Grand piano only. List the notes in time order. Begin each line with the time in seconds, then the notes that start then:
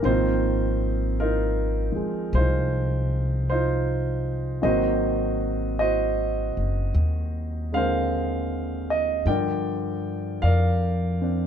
0.02 D#3 F3 A#3 C4 D#4 F4 C5
1.20 D#4 F4 A#4
1.92 F3 G#3
2.35 D#4 F4 C5
3.50 D#4 F4 C5
4.62 D#3 F#3 A#3 C4 F#4 C5 D#5
5.79 F#4 C5 D#5
7.72 D3 G#3 C4 A#4 F5
7.77 C5
8.90 D#5
9.27 D3 F3 D4 A#4 D5 G5
10.42 A#4 D5 F5
11.21 C4 D4